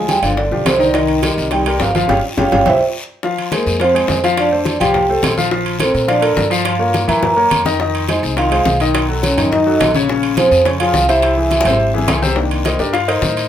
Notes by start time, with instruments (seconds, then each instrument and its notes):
Already playing: upright bass D2, grand piano F3 F4 G#4
0.08 trombone G3, vibraphone G5, high bongo, high conga, high timbale, low timbale, short guiro
0.22 upright bass G1, grand piano D3 D4 D5, trombone F3, vibraphone F5, high conga, high timbale, short guiro
0.37 trombone D3, vibraphone D5, high bongo, high conga, long guiro
0.51 upright bass B1, grand piano F3 F4 G4, high bongo, high conga
0.65 upright bass C2, trombone C3, vibraphone C5, high bongo, low bongo, high conga, high timbale, low timbale, short guiro
0.79 trombone D3, grand piano D#3 D#4 D#5, vibraphone D5, high bongo, short guiro
0.94 grand piano D#3 D#4 D#5, trombone D#3, vibraphone D#5, high bongo, high conga, high timbale, long guiro
1.08 high conga, high timbale
1.23 grand piano G3 G4 A#4, high bongo, high conga, high timbale, low timbale, short guiro
1.37 upright bass C2, high conga, short guiro
1.51 grand piano D#3 D#4 D#5, trombone G3, vibraphone G5, high bongo, high conga, high timbale, long guiro
1.66 grand piano G3 G4 A#4, high conga, high timbale
1.80 upright bass G1, trombone F3, vibraphone F5, high bongo, low bongo, high conga, low timbale, short guiro
1.95 grand piano F3 F4 F5, high conga, high timbale, short guiro
2.07 upright bass G1, trombone C#3, grand piano C#4 F4 G4, vibraphone C#5 F5 G5, low bongo, low conga, high timbale, long guiro
2.37 upright bass G1, trombone C#3, grand piano C#4 F4 G4, vibraphone C#5 F5 G5, low bongo, low conga, high timbale, long guiro
2.51 upright bass G1, trombone C#3, grand piano C#4 F4 G4, vibraphone C#5 F5 G5, low bongo, low conga, high timbale, long guiro
2.65 upright bass C2, trombone E3, grand piano C4 E4 G4, vibraphone C5 E5 G5, low bongo, low conga, high timbale, long guiro
3.23 grand piano F3 F4 F5, high bongo, high conga, long guiro
3.38 high conga, high timbale
3.52 grand piano G#3 G#4 C5, trombone A#3, vibraphone A#4, high bongo, high conga, high timbale, short guiro
3.66 upright bass F2, short guiro
3.80 grand piano F3 F4 F5, trombone C4, vibraphone C5, high bongo, high conga, high timbale
3.94 grand piano G#3 G#4 C5, high conga, high timbale
4.08 upright bass F2, high bongo, low bongo, high conga, low timbale, short guiro
4.24 grand piano F3 F4 F5, high timbale, short guiro
4.37 trombone D4, vibraphone D5, high bongo, high conga, high timbale, long guiro
4.52 grand piano A3 A4 C5, high conga
4.65 high bongo, high conga, high timbale, short guiro
4.80 upright bass C2, grand piano F3 F4 F5, trombone G4, vibraphone G5, high bongo, high conga, low conga, high timbale, short guiro
4.94 high bongo, high conga, low conga, long guiro
5.09 grand piano A3 A4 C5, high bongo, high conga
5.23 upright bass A#1, high bongo, low bongo, high conga, high timbale, low timbale, short guiro
5.37 grand piano F3 F4 F5, high bongo, high conga, short guiro
5.51 grand piano F3 F4 F5, high bongo, high conga, long guiro
5.66 high conga, high timbale
5.80 grand piano A3 A4 A#4, trombone C4, vibraphone C5, high bongo, high conga, high timbale, short guiro
5.94 upright bass A#2, short guiro
6.08 grand piano F3 F4 F5, trombone D4, vibraphone D5, high bongo, high conga, high timbale, long guiro
6.21 grand piano A3 A4 A#4, high conga, high timbale
6.37 upright bass G2, high bongo, low bongo, high conga, short guiro
6.50 grand piano F3 F4 F5, high timbale, short guiro
6.65 trombone F4, vibraphone F5, high bongo, high conga, high timbale
6.79 grand piano A#3 A#4 C#5, high conga
6.94 high bongo, high conga, high timbale, short guiro
7.08 upright bass F#2, grand piano E3 E4 E5, trombone A#4, vibraphone A#5, high bongo, high conga, low conga, high timbale, short guiro
7.23 high bongo, high conga, low conga, long guiro
7.36 grand piano A#3 A#4 C#5, high conga
7.51 upright bass F2, low bongo, high conga, high timbale, short guiro
7.65 grand piano D#3 D#4 D#5, low bongo, high conga, short guiro
7.80 grand piano D#3 D#4 D#5, high bongo, high conga, long guiro
7.95 high conga, high timbale
8.08 grand piano G#3 G#4 C5, trombone D#4, vibraphone D#5, high bongo, high conga, high timbale, short guiro
8.23 upright bass C2, short guiro
8.37 grand piano D#3 D#4 D#5, trombone F4, vibraphone F5, high bongo, high conga, high timbale, long guiro
8.51 grand piano G#3 G#4 C5, high conga, high timbale
8.66 upright bass B1, high bongo, low bongo, high conga, short guiro
8.80 grand piano D#3 D#4 D#5, high timbale, short guiro
8.95 high bongo, high conga, high timbale, long guiro
9.09 grand piano F#3 F#4 A4, high conga
9.23 trombone C#4, vibraphone C#5, high bongo, high conga, high timbale, short guiro
9.37 upright bass F#2, grand piano D#3 D#4 D#5, high bongo, high conga, low conga, high timbale, short guiro
9.52 trombone D#4, vibraphone D#5, high bongo, high conga, low conga, long guiro
9.66 grand piano F#3 F#4 A4, high bongo, high conga
9.80 upright bass A#1, high bongo, low bongo, high conga, high timbale, low timbale, short guiro
9.94 grand piano C#3 C#4 C#5, high bongo, high conga, short guiro
10.09 grand piano C#3 C#4 C#5, high bongo, long guiro
10.22 high conga, high timbale
10.37 grand piano F3 F4 G#4, trombone C4, vibraphone C5, high bongo, high conga, high timbale, short guiro
10.51 upright bass F2, short guiro
10.65 grand piano C#3 C#4 C#5, trombone C#4, vibraphone C#5, high bongo, high conga, high timbale, long guiro
10.80 grand piano F3 F4 G#4, trombone F4, vibraphone F5, high conga, high timbale
10.94 upright bass C2, high bongo, low bongo, high conga, short guiro
11.09 grand piano C3 C4 C5, trombone E4, vibraphone E5, high timbale, short guiro
11.22 high bongo, high conga, high timbale, long guiro
11.36 grand piano E3 E4 G#4, high conga
11.51 high bongo, high conga, high timbale, short guiro
11.61 upright bass G#1, high bongo
11.65 grand piano C3 C4 C5, high conga, low conga, high timbale, short guiro
11.70 low bongo
11.80 high conga, long guiro
11.94 grand piano E3 E4 G#4, high conga
11.98 low bongo
12.08 upright bass C2, low bongo, high conga, high timbale, low timbale, short guiro
12.22 grand piano C3 C4 C5, high conga, short guiro
12.27 low bongo
12.36 grand piano D#3 A#3 D4, high bongo, high conga, long guiro
12.51 high conga, high timbale
12.65 grand piano D#4 A#4 C5 D#5, high bongo, high conga, high timbale, short guiro
12.79 upright bass G2, grand piano D4 G4 A#4 D5, short guiro
12.93 grand piano F4 F5, high bongo, high conga, high timbale, long guiro
13.08 grand piano D#4 A#4 C5 D#5, high conga, high timbale
13.22 upright bass A2, high bongo, low bongo, high conga, short guiro
13.37 high timbale, short guiro